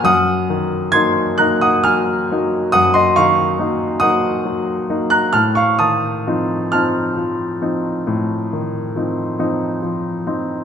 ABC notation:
X:1
M:12/8
L:1/16
Q:3/8=45
K:Fphr
V:1 name="Grand piano"
[ge']4 [c'a']2 [bg'] [ge'] [af']4 [ge'] [ec'] [fd']4 [ge']4- [ge'] [bg'] | [=af'] [fd'] [ae']4 [af']12 z6 |]
V:2 name="Grand piano" clef=bass
G,,2 E,2 [G,B,E]2 [G,B,E]2 G,2 [G,B,E]2 G,,2 E,2 [G,B,E]2 [G,B,E]2 G,2 [G,B,E]2 | =A,,2 E,2 [F,CE]2 [F,CE]2 F,2 [F,CE]2 A,,2 E,2 [F,CE]2 [F,CE]2 F,2 [F,CE]2 |]